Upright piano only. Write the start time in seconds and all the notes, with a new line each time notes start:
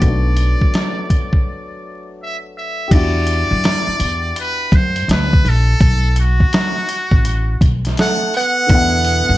0.00 F#3 A3 B3
0.06 D4 F#4
2.88 D4 G4
2.93 E4 F#4
8.67 B2 D3 D4
8.73 E4 F#5